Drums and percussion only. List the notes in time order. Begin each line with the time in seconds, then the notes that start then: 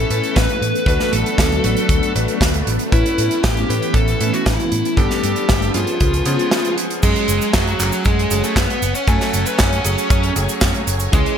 0.10 closed hi-hat
0.23 closed hi-hat
0.36 kick, snare, closed hi-hat
0.49 closed hi-hat
0.62 closed hi-hat
0.75 closed hi-hat
0.86 kick, closed hi-hat
1.00 snare, closed hi-hat
1.13 closed hi-hat
1.26 closed hi-hat
1.38 kick, snare, closed hi-hat
1.52 closed hi-hat
1.64 closed hi-hat
1.77 closed hi-hat
1.89 kick, closed hi-hat
2.03 closed hi-hat
2.16 closed hi-hat
2.28 closed hi-hat
2.41 kick, snare, closed hi-hat
2.54 closed hi-hat
2.67 closed hi-hat
2.79 closed hi-hat
2.92 kick, closed hi-hat
3.06 closed hi-hat
3.18 closed hi-hat
3.31 closed hi-hat
3.44 kick, snare, closed hi-hat
3.57 closed hi-hat
3.70 closed hi-hat
3.82 closed hi-hat
3.94 kick, closed hi-hat
4.08 closed hi-hat
4.21 closed hi-hat
4.34 closed hi-hat
4.46 kick, snare, closed hi-hat
4.60 closed hi-hat
4.72 closed hi-hat
4.85 closed hi-hat
4.97 kick, closed hi-hat
5.11 snare, closed hi-hat
5.23 closed hi-hat
5.36 closed hi-hat
5.49 kick, snare, closed hi-hat
5.62 closed hi-hat
5.74 closed hi-hat
5.87 closed hi-hat
6.00 kick, closed hi-hat
6.14 closed hi-hat
6.25 closed hi-hat
6.39 closed hi-hat
6.51 snare, closed hi-hat
6.65 closed hi-hat
6.78 closed hi-hat
6.90 closed hi-hat
7.03 kick, closed hi-hat, crash, cabasa
7.16 closed hi-hat
7.28 closed hi-hat, cabasa
7.42 closed hi-hat, cabasa
7.53 kick, snare, clap, closed hi-hat, cabasa
7.67 closed hi-hat
7.80 clap, closed hi-hat, cabasa
7.92 closed hi-hat, cabasa
8.05 kick, closed hi-hat, cabasa
8.19 closed hi-hat
8.31 closed hi-hat, cabasa
8.44 closed hi-hat, cabasa
8.56 kick, snare, clap, closed hi-hat, cabasa
8.70 closed hi-hat
8.82 closed hi-hat, cabasa
8.95 closed hi-hat, cabasa
9.07 kick, closed hi-hat, cabasa
9.21 snare, closed hi-hat
9.34 closed hi-hat, cabasa
9.46 closed hi-hat, cabasa
9.59 kick, snare, clap, closed hi-hat, cabasa
9.72 closed hi-hat
9.84 closed hi-hat, cabasa
9.98 closed hi-hat, cabasa
10.10 kick, closed hi-hat, cabasa
10.23 closed hi-hat
10.36 closed hi-hat, cabasa
10.49 closed hi-hat, cabasa
10.61 kick, snare, clap, closed hi-hat, cabasa
10.74 closed hi-hat
10.87 closed hi-hat, cabasa
10.99 closed hi-hat, cabasa
11.13 kick, closed hi-hat, cabasa
11.26 closed hi-hat